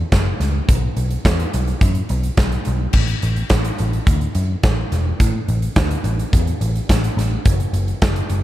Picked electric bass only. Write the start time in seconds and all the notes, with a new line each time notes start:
0.12 F#1
0.40 C#2
0.69 B1
0.97 B1
1.25 E2
1.54 B1
1.81 F#2
2.10 B1
2.38 B1
2.67 B1
2.94 A1
3.23 A1
3.50 A1
3.80 A1
4.07 D2
4.35 F#2
4.64 A1
4.92 E1
5.20 A2
5.48 A1
5.76 D2
6.04 A1
6.33 E2
6.61 A1
6.89 A1
7.17 A1
7.46 F#1
7.73 F#1
8.02 F#1
8.30 F#1